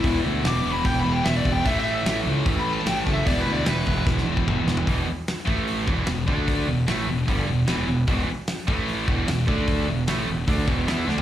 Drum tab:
HH |o---o---o---o---|o---o---o---o---|o---o-----------|o---o---o---o---|
SD |----o-------o---|----o-------o---|----o---oo----o-|----o-------o---|
T2 |----------------|----------------|------------o---|----------------|
FT |----------------|----------------|---------------o|----------------|
BD |o-------o-----o-|o-------o-----o-|o-----o-o--o----|o-----o---o---o-|

HH |o---o---o---o---|o---o---o---o---|o---o---o---o---|
SD |----o-------o---|----o-------o---|----o-------o-o-|
T2 |----------------|----------------|----------------|
FT |----------------|----------------|---------------o|
BD |o-------o-------|o-----o---o---o-|o-------o-o-----|